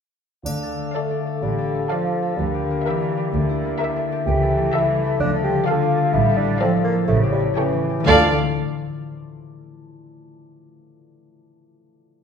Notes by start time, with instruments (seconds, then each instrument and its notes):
0.45 double bass section D2, harp D3, bassoon D4, french horn section A4 F5, triangle
0.63 harp A4
0.79 harp A3
0.94 bassoon A3, viola section A4, harp A4, violin section D5 F5
1.11 harp D4
1.26 harp A4
1.43 double bass section A1, cello section D3, bassoon G3, harp D4
1.58 harp A4
1.75 harp A3
1.89 cello section F3, bassoon F3, viola section A4, harp A4, violin section D5 F5
2.06 harp D4
2.22 harp A4
2.36 double bass section D2, harp D3, cello section D3, bassoon G3, french horn section A#4
2.54 harp G4
2.70 harp A#3
2.85 cello section E3, harp G4, viola section A#4, violin section E5
3.02 harp D4
3.18 harp G4
3.33 double bass section D2, cello section D3, harp D3, french horn section E5
3.49 harp E4
3.65 harp A#3
3.79 harp G4, viola section A#4, violin section E5
3.96 harp D4
4.12 harp G4
4.27 double bass section C#2, harp C#3, cello section E3, bassoon G4, french horn section A4
4.43 harp A4
4.58 harp A3
4.74 bassoon E4, harp A4, viola section A4, violin section E5
4.89 harp G3
5.05 harp A4
5.20 double bass section D2, harp D3, cello section F3, bassoon D4, french horn section F5
5.36 harp A4
5.44 bassoon G4
5.51 harp A3
5.65 cello section D3, bassoon F4, harp A4, viola section A4, violin section D5 F5
5.82 harp D4
5.97 harp A4
6.13 double bass section A1, harp A2, cello section G3, bassoon E4
6.30 harp A4
6.37 bassoon D4
6.45 harp A3
6.59 cello section F3, bassoon C4, harp A4, viola section A4, violin section D5 F5
6.76 harp F3
6.84 bassoon A#3
6.92 harp A4
7.08 double bass section A1, harp A2, cello section C#3, bassoon A3, french horn section G4 C#5
7.23 harp G4
7.32 bassoon G3
7.40 harp A3
7.56 cello section C#3, bassoon E3, harp G4, viola section A4, violin section C#5 G5
7.73 harp E3
7.89 harp G4
8.00 harp D3 A3
8.05 double bass section D2, cello section D2, bassoon D3, harp D4 F4, french horn section D4 F4, viola section A4, violin section D5 F5
8.12 harp D5